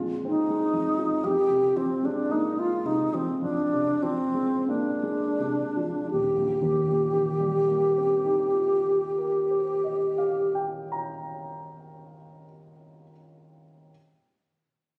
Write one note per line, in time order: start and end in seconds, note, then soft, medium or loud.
0.00 1.19 A#1 soft
0.00 0.73 F2 soft
0.00 0.98 F3 soft
0.00 0.50 G#3 soft
0.00 0.25 C4 soft
0.25 0.64 C4 soft
0.25 1.26 D#4 medium
0.50 0.89 G#3 soft
0.73 1.13 F2 soft
0.98 1.23 F3 soft
1.24 3.38 F2 medium
1.24 1.78 G4 medium
1.49 1.92 C3 soft
1.76 2.19 F3 soft
1.76 2.07 C4 medium
2.03 2.46 G#3 soft
2.03 2.33 D4 medium
2.30 2.74 A#3 soft
2.30 2.61 D#4 medium
2.57 3.01 G#3 soft
2.57 2.87 F4 medium
2.85 3.30 C3 soft
2.85 3.16 D#4 medium
3.13 3.60 F3 soft
3.13 3.42 C4 medium
3.42 6.10 F2 soft
3.42 4.04 D4 medium
3.73 4.22 C3 soft
4.02 4.54 F3 soft
4.02 4.67 C4 medium
4.34 4.89 G#3 soft
4.68 5.25 A#3 soft
4.68 6.10 D4 soft
5.03 5.63 G#3 soft
5.40 5.99 C3 soft
5.77 6.13 F3 soft
6.11 10.60 D#1 soft
6.11 10.58 G4 soft
6.36 10.83 A#1 soft
6.61 11.08 D#2 soft
6.87 11.34 A#2 soft
7.12 11.59 D#3 soft
7.40 11.87 G3 soft
7.67 12.14 A#3 soft
7.97 12.44 C4 soft
8.25 12.72 D#4 soft
8.54 13.01 F4 soft
8.87 13.11 G4 soft
9.18 13.10 A#4 soft
9.50 13.10 C5 soft
9.84 13.10 D#5 soft
10.18 13.10 F5 soft
10.55 13.11 G5 soft
10.92 13.11 A#5 soft